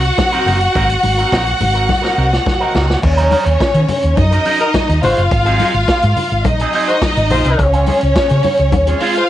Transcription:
Already playing: F#4 F#5
0.04 muted clean electric guitar stroke, closed hi-hat
0.17 muted clean electric guitar stroke, kick, snare, closed hi-hat, high conga
0.32 F#3 C4 D#4 A#4, closed hi-hat
0.46 F#1 F#3 C4 D#4 A#4, open hi-hat, low conga
0.60 muted clean electric guitar stroke, closed hi-hat
0.74 G#1 F#3 C4 D#4 A#4, kick, closed hi-hat, muted conga
0.90 muted clean electric guitar stroke, closed hi-hat
1.03 G#1, muted clean electric guitar stroke, open hi-hat, high conga
1.17 F#3 C4 D#4 A#4, closed hi-hat
1.31 A#1 F#3 C4 D#4 A#4, kick, snare, closed hi-hat
1.46 muted clean electric guitar stroke, closed hi-hat
1.60 G#1, muted clean electric guitar stroke, open hi-hat, muted conga, high conga, low conga
1.74 F#3 C4 D#4 A#4, closed hi-hat
1.88 muted clean electric guitar stroke, kick, snare, muted conga, high conga
2.02 F#3 C4 D#4 A#4, snare
2.16 C2 F#3 C4 D#4 A#4
2.31 muted clean electric guitar stroke, snare
2.46 muted clean electric guitar stroke, kick, snare, muted conga, high conga
2.60 F#3 C4 D#4 A#4
2.74 C#2 F#3 C4 D#4 A#4, snare, muted conga, low conga
2.88 muted clean electric guitar stroke, snare
3.02 D#2 C#4 C#5, muted clean electric guitar stroke, kick, crash, muted conga
3.16 F#3 C#4 D#4 A#4, closed hi-hat
3.31 F#3 C#4 D#4 A#4, open hi-hat, muted conga, high conga
3.45 D#2, muted clean electric guitar stroke, closed hi-hat
3.60 muted clean electric guitar stroke, kick, snare, closed hi-hat
3.74 D#3, muted clean electric guitar stroke, closed hi-hat
3.88 open hi-hat, muted conga, high conga, low conga
4.02 D#2, muted clean electric guitar stroke, closed hi-hat
4.17 F#2 D#4 D#5, muted clean electric guitar stroke, kick, closed hi-hat, muted conga, high conga
4.31 F#3 C#4 D#4 A#4, closed hi-hat
4.45 F#3 C#4 D#4 A#4, open hi-hat, muted conga
4.59 F#3 D#4 A#4, muted clean electric guitar stroke, closed hi-hat
4.74 muted clean electric guitar stroke, kick, snare, closed hi-hat, muted conga, high conga
4.88 D#2, muted clean electric guitar stroke, closed hi-hat
5.02 G#1 G#3 F4 F#4 C5 F5, open hi-hat, muted conga, low conga
5.17 F#1, muted clean electric guitar stroke, closed hi-hat
5.31 G#1, muted clean electric guitar stroke, kick, closed hi-hat, muted conga
5.45 F#3 C4 D#4 G#4, closed hi-hat
5.59 F#3 C4 D#4 G#4, open hi-hat, muted conga, high conga
5.74 G#1, muted clean electric guitar stroke, closed hi-hat
5.88 muted clean electric guitar stroke, kick, snare, closed hi-hat, muted conga
6.02 G#2, muted clean electric guitar stroke, closed hi-hat
6.17 open hi-hat, high conga, low conga
6.30 G#1, muted clean electric guitar stroke, closed hi-hat
6.45 A#1 D#4 D#5, muted clean electric guitar stroke, kick, closed hi-hat, high conga
6.59 F#3 C4 D#4 G#4, closed hi-hat
6.73 F#3 C4 D#4 G#4, open hi-hat
6.88 G#3 F#4 C5, muted clean electric guitar stroke, closed hi-hat
7.02 muted clean electric guitar stroke, kick, snare, closed hi-hat, muted conga, high conga
7.17 G#1, muted clean electric guitar stroke, closed hi-hat
7.30 A#1 G#3 F4 C5, open hi-hat, muted conga, low conga
7.45 C2, muted clean electric guitar stroke, closed hi-hat
7.59 C#2 C#4 C#5, muted clean electric guitar stroke, kick, closed hi-hat
7.73 G#3 C4 F4 G#4, closed hi-hat
7.86 G#3 C4 F4 G#4, open hi-hat, high conga
8.01 C#2, muted clean electric guitar stroke, closed hi-hat
8.15 muted clean electric guitar stroke, kick, snare, closed hi-hat, muted conga
8.29 C#3, muted clean electric guitar stroke, closed hi-hat
8.43 open hi-hat, muted conga, high conga, low conga
8.57 C#2, muted clean electric guitar stroke, closed hi-hat
8.72 D#2, muted clean electric guitar stroke, kick, closed hi-hat, muted conga, high conga
8.87 G#3 C4 F4 G#4, closed hi-hat
9.00 G#3 C4 F4 G#4 F5, open hi-hat, muted conga
9.15 G#3 F4 C5, muted clean electric guitar stroke, closed hi-hat

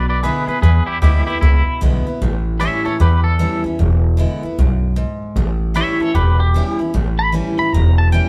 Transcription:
Already playing: B1 B2
0.09 B4 D5
0.23 D3 G#3 B3 E4 G#4 B4
0.47 B3 E4 G#4 B4, muted upright bass stroke
0.62 E2 G#4 B4
0.86 E4 G4, muted upright bass stroke
1.02 D2 D3 G#3 B3 E4 G4
1.26 B3 E4 G4
1.41 C#2 B2 E4
1.67 muted upright bass stroke
1.81 B1 D3 G#3 B3 E4
2.07 B3 E4, muted upright bass stroke
2.21 A1 A2
2.60 E3 G3 C#4 E4 C#5 E5
2.85 C#4 E4 A4 C#5, muted upright bass stroke
3.00 E2 G4 B4
3.24 A4
3.39 E3 G3 C#4 E4
3.64 C#4 E4, muted upright bass stroke
3.79 E1 E2
4.17 D3 G#3 B3 E4
4.43 B3 E4, muted upright bass stroke
4.58 B1 F#2
4.96 G#2
5.22 muted upright bass stroke
5.36 A1 A2
5.74 E3 G3 C#4 E4 C#5 E5
6.00 C#4 E4 A4 C#5, muted upright bass stroke
6.14 E1 E2 G4 B4
6.40 G4
6.54 E3 G3 C#4 E4
6.79 C#4 E4, muted upright bass stroke
6.94 A1 A2
7.19 B5
7.32 E3 G3 C#4 E4
7.58 E4 B5, muted upright bass stroke
7.73 E1 E2 A#5
7.98 A5
8.12 E3 G3 C#4 E4 G5

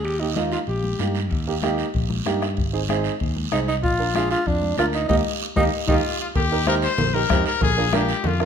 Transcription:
0.04 D#2 G4, long guiro
0.20 A#3 D#4 G4
0.36 A#3 D#4 F4, high conga, short guiro
0.52 F4, short guiro
0.67 A#1 G4, long guiro
0.84 high conga
0.99 G2 A#3 D#4 G4, high conga, short guiro
1.15 short guiro
1.31 D#2, bombo low, long guiro
1.47 A#3 D#4 G4
1.62 A#3 D#4 G4, bombo rim, high conga, short guiro
1.78 short guiro
1.94 A#1, bombo low, long guiro
2.10 high conga
2.25 G2 A#3 D#4 G4, bombo rim, high conga, short guiro
2.42 bombo rim, short guiro
2.57 G#1, bombo low, long guiro
2.73 C4 D#4 G#4
2.89 C4 D#4 G#4, bombo rim, high conga, short guiro
3.04 short guiro
3.20 D#2, bombo low, long guiro
3.36 high conga
3.52 C2 C4 D#4 G#4, bombo rim, high conga, short guiro
3.68 D#4, short guiro
3.83 A#1 F4, bombo low, long guiro
3.99 D4 F4 A#4
4.15 D4 F4 G#4, bombo rim, high conga, short guiro
4.31 F4, short guiro
4.46 F2 D4, bombo low, long guiro
4.62 high conga
4.77 D2 D4 F4 A#4, bombo rim, high conga, short guiro
4.93 D#4, short guiro
5.09 D#2 A#3 D#4 G4, bombo low, high conga, long guiro
5.56 D#2 A#3 D#4 G4, bombo low, high conga, long guiro
5.88 D#2 A#3 D#4 F4 G4, bombo low, high conga, long guiro
6.21 F4
6.35 D#2 G4, bombo low, cowbell, high conga, long guiro
6.52 D#4 G4 A#4
6.66 D#4 G4 A#4 C5, bombo rim, high conga, short guiro
6.82 C5, short guiro
6.98 A#1, cowbell, high conga, low conga, long guiro
7.14 D#4 G4 A#4
7.29 F2 D#4 G4 C5, bombo low, bombo rim, high conga, low timbale, short guiro
7.46 A#4, short guiro
7.61 A#1 G#4, bombo low, cowbell, high conga, low conga, long guiro
7.77 D4 F4 A#4
7.93 D4 F4 G4 A#4, bombo rim, high conga, short guiro
8.09 short guiro
8.24 F2 F4, cowbell, high conga, low conga, long guiro
8.40 D4 F4 A#4, bombo rim

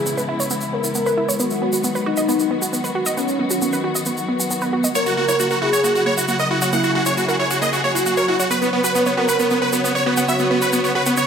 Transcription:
Already playing: C#3 E3 G#3 B3 E4 G#4, downlifter
0.06 B3, shaker
0.17 B4, shaker
0.29 E4
0.40 C#5, shaker
0.50 B3, shaker
0.61 shaker
0.73 B3 A#4
0.84 E4, shaker
0.95 B3, shaker
1.06 B4, shaker
1.17 E4
1.28 C#5, shaker
1.39 D#3 F#3 B3 F#4, shaker
1.50 shaker
1.62 B3
1.73 F#4, shaker
1.84 B3, shaker
1.95 B4, shaker
2.06 D#4 F#4
2.17 D#5, shaker
2.29 B3, shaker
2.39 shaker
2.51 B3
2.62 F#4, shaker
2.73 B3, shaker
2.84 B4, shaker
2.95 F#4
3.06 D#5, shaker
3.17 B3 C#4, shaker
3.28 shaker
3.40 B3
3.50 F#4, shaker
3.62 B3, shaker
3.73 B4, shaker
3.84 F#4
3.95 D#5, shaker
4.05 B3, shaker
4.17 shaker
4.28 B3
4.40 F#4, shaker
4.51 B3, shaker
4.61 B4, shaker
4.73 F#4
4.84 D#5, shaker
4.95 C#3 A#3 E4 A#4 C#5, shaker
5.06 F#4, shaker
5.17 A#3 F#4
5.28 E4 C#5, shaker
5.40 A#3 F#4, shaker
5.51 F#4 A#4, shaker
5.62 E4 F#4 G#4
5.73 C#5, shaker
5.84 A#3 F#4, shaker
5.95 F#4, shaker
6.06 A#3 C#5
6.17 E4 F#4, shaker
6.28 A#3 F#4, shaker
6.39 A#4 D#5, shaker
6.51 E4 F#4
6.61 F#4 C#5, shaker
6.73 A#3 E4 G#4 F#5, shaker
6.83 F#4, shaker
6.95 A#3 F#4
7.06 E4 C#5, shaker
7.17 A#3 F#4, shaker
7.28 F#4 A#4, shaker
7.39 E4 C#5
7.51 F#4 C#5, shaker
7.62 A#3 D#5, shaker
7.73 F#4, shaker
7.84 A#3 F#4 C#5
7.95 E4 F#4, shaker
8.06 A#3 F#4, shaker
8.17 A#4 C#5, shaker
8.28 E4 F#4
8.39 F#4 C#5, shaker
8.51 C#3 B3 F#4 B4 C#5, shaker
8.62 B3, shaker
8.73 B3
8.84 F#4 B4, shaker
8.95 B3, shaker
9.06 B3 C#5, shaker
9.17 B3 F#4 A#4
9.28 B4 F#5, shaker
9.39 B3, shaker
9.50 B3, shaker
9.62 B3 B4
9.73 B3 F#4, shaker
9.84 B3, shaker
9.95 C#5, shaker
10.06 B3 F#4
10.17 B3 F#5, shaker
10.28 B3 F#4 E5, shaker
10.39 B3, shaker
10.51 B3
10.62 F#4 B4, shaker
10.73 B3, shaker
10.84 B3 C#5, shaker
10.95 F#4 B4
11.06 B3 F#5, shaker
11.17 B3 C#5, reverse cymbal, shaker

